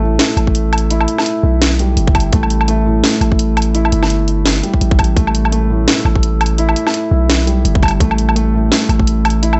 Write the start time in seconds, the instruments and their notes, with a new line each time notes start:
Already playing: 808-style bass A1, felt piano A3
0.02 felt piano A2
0.19 snare, closed hi-hat
0.37 808-style bass A1, closed hi-hat, low woodblock
0.47 kick
0.55 closed hi-hat
0.73 closed hi-hat, low woodblock
0.78 closed hi-hat
0.90 felt piano E4, closed hi-hat
1.01 low woodblock
1.08 closed hi-hat
1.18 snare, low woodblock
1.26 closed hi-hat
1.43 808-style bass B1
1.62 snare, closed hi-hat
1.79 felt piano G3, closed hi-hat
1.97 808-style bass G1, closed hi-hat
2.07 kick
2.15 kick, closed hi-hat, low woodblock
2.20 closed hi-hat
2.33 808-style bass A1, felt piano A3, kick, closed hi-hat
2.43 low woodblock
2.50 closed hi-hat
2.61 low woodblock
2.68 felt piano A3, closed hi-hat
2.86 felt piano A2
3.04 snare, closed hi-hat
3.21 808-style bass A1, closed hi-hat, low woodblock
3.32 kick
3.39 closed hi-hat
3.57 closed hi-hat, low woodblock
3.62 closed hi-hat
3.74 felt piano E4, closed hi-hat
3.85 low woodblock
3.92 808-style bass G1, closed hi-hat
4.03 snare, low woodblock
4.10 closed hi-hat
4.28 closed hi-hat
4.46 snare, closed hi-hat
4.63 felt piano G3, closed hi-hat
4.74 kick
4.81 808-style bass A1, closed hi-hat
4.91 kick
4.99 kick, closed hi-hat, low woodblock
5.04 closed hi-hat
5.16 808-style bass A1, felt piano A3, kick, closed hi-hat
5.27 low woodblock
5.35 closed hi-hat
5.45 low woodblock
5.52 felt piano A3, closed hi-hat
5.70 felt piano A2
5.88 snare, closed hi-hat
6.05 808-style bass A1, low woodblock
6.16 kick
6.23 closed hi-hat
6.41 closed hi-hat, low woodblock
6.46 closed hi-hat
6.58 felt piano E4, closed hi-hat
6.69 low woodblock
6.76 closed hi-hat
6.87 snare, low woodblock
6.94 closed hi-hat
7.11 808-style bass B1
7.30 snare, closed hi-hat
7.47 felt piano G3, closed hi-hat
7.65 808-style bass G1, closed hi-hat
7.75 kick
7.83 kick, closed hi-hat, low woodblock
7.86 closed hi-hat, low woodblock
7.88 low woodblock
7.91 low woodblock
8.00 808-style bass A1, felt piano A3, kick, closed hi-hat
8.11 low woodblock
8.18 closed hi-hat
8.29 low woodblock
8.36 felt piano A3, closed hi-hat
8.54 felt piano A2
8.72 snare, closed hi-hat
8.89 808-style bass A1, closed hi-hat, low woodblock
9.00 kick
9.07 closed hi-hat
9.25 closed hi-hat, low woodblock
9.30 closed hi-hat
9.43 felt piano E4, closed hi-hat
9.53 low woodblock